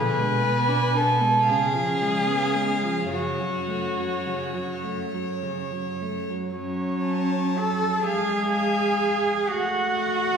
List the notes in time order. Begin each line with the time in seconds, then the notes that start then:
Already playing: B2 D3 B4 G#5
0.19 G#3
0.43 B3
0.68 D4
0.95 B3 A4
1.21 G#3
1.47 C#3 G#4 F5
1.74 F3
2.01 G#3
2.28 B3
2.55 G#3
2.83 F3
3.11 F#2 C#3 F#4 C#5
3.40 F#3
3.68 A3
3.97 F#3
4.26 C#3
4.54 F#3
4.84 A3
5.14 F#3
5.43 C#3
5.72 F#3
6.02 A3
6.30 F#3
6.56 F#3 C#4 C#5
7.07 A5
7.57 A4 A5
8.06 G#3 G#4 F5 G#5
8.53 F5
9.49 A3 F#4 F#5
9.97 F#5